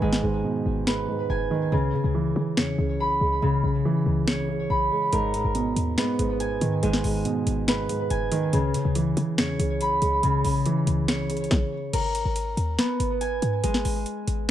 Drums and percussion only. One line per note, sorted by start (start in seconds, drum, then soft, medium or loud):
0.13 snare medium
0.87 finger snap medium
0.87 snare loud
2.57 finger snap medium
2.57 snare loud
4.28 finger snap medium
4.28 snare loud
5.13 closed hi-hat medium
5.34 closed hi-hat medium
5.55 closed hi-hat medium
5.76 closed hi-hat medium
5.98 finger snap medium
5.98 snare loud
5.98 closed hi-hat medium
6.19 closed hi-hat medium
6.40 closed hi-hat medium
6.61 closed hi-hat medium
6.83 closed hi-hat medium
6.93 snare medium
7.04 open hi-hat medium
7.25 closed hi-hat medium
7.47 closed hi-hat medium
7.68 finger snap medium
7.68 snare loud
7.68 closed hi-hat medium
7.89 closed hi-hat medium
8.10 closed hi-hat medium
8.32 closed hi-hat medium
8.53 closed hi-hat medium
8.74 closed hi-hat medium
8.95 closed hi-hat medium
9.17 closed hi-hat medium
9.38 finger snap medium
9.38 snare loud
9.38 closed hi-hat medium
9.60 closed hi-hat medium
9.81 closed hi-hat medium
10.02 closed hi-hat medium
10.23 closed hi-hat medium
10.45 open hi-hat medium
10.66 closed hi-hat medium
10.87 closed hi-hat medium
11.08 finger snap medium
11.08 snare loud
11.08 closed hi-hat medium
11.30 closed hi-hat medium
11.37 closed hi-hat medium
11.44 closed hi-hat soft
11.51 kick loud
11.51 snare medium
11.93 closed hi-hat medium
11.93 crash loud
12.15 closed hi-hat medium
12.36 closed hi-hat medium
12.57 closed hi-hat medium
12.79 finger snap medium
12.79 snare loud
12.79 closed hi-hat medium
13.00 closed hi-hat medium
13.21 closed hi-hat medium
13.42 closed hi-hat medium
13.64 closed hi-hat medium
13.74 snare medium
13.85 open hi-hat medium
14.06 closed hi-hat medium
14.28 closed hi-hat medium